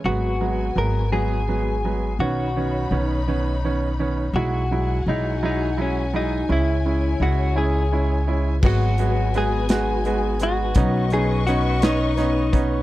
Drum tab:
CC |------|------|------|------|
HH |------|------|------|------|
SD |------|------|------|------|
BD |------|------|------|------|

CC |x-----|------|
HH |-xxxxx|xxxxxx|
SD |---o--|---oo-|
BD |o-----|o----o|